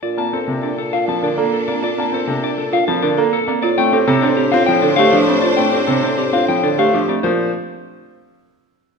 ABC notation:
X:1
M:3/4
L:1/16
Q:1/4=100
K:Bb
V:1 name="Clean electric guitar"
d a A z d A f a d z A d | d a A z d A f a d z A d | d g G A d G f g d f G d | d g G A d G f g d f G d |
c2 z8 z2 |]
V:2 name="String section"
[DA]12- | [DA]8- [DA]3 z | [Dc]12- | [Dc]8- [Dc]3 z |
z12 |]
V:3 name="Marimba"
F C z2 D z F C B A z C | F C z2 D z F C B A z C | F C A C D C F C A G D C | F C A C D C F C A G D C |
F2 z8 z2 |]
V:4 name="Grand piano"
z B, C C, z3 F, D, B, z B, | z B, C C, z3 F, D, B, z B, | z A, C C, C z C F, D, A, F, A, | z A, C C, C z C F, D, A, F, A, |
F,2 z8 z2 |]
V:5 name="Bassoon" clef=bass
B,,12- | B,,12 | A,,12- | A,,12 |
B,,2 z8 z2 |]